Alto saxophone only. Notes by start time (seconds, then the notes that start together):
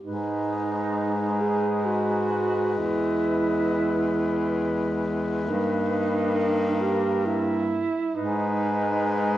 0.03 D#4
1.41 G#4
1.85 F#4
2.78 E4
5.43 E4
5.49 D#4
6.81 G4
7.26 E4
8.16 D#4